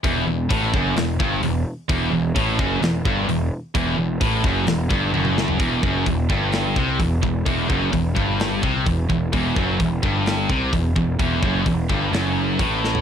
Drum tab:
HH |o---o---o---o---|o---o---o---o---|o---o---o-------|o---o---o---o---|
SD |--------o-------|--------o-------|--------o-----o-|--------o-------|
T1 |----------------|----------------|------------o---|----------------|
T2 |----------------|----------------|-------------o--|----------------|
FT |----------------|----------------|---------------o|----------------|
BD |o---o-o---o-----|o---o-o---o-----|o---o-o---o-----|o-o-o-o---o-o-o-|

HH |o---o---o---o---|o---o---o---o---|o---o---o---o---|
SD |--------o-------|--------o-------|--------o-----o-|
T1 |----------------|----------------|----------------|
T2 |----------------|----------------|----------------|
FT |----------------|----------------|---------------o|
BD |o-o-o-o---o-o-o-|o-o-o-o---o-o-o-|o-o-o-o-----o---|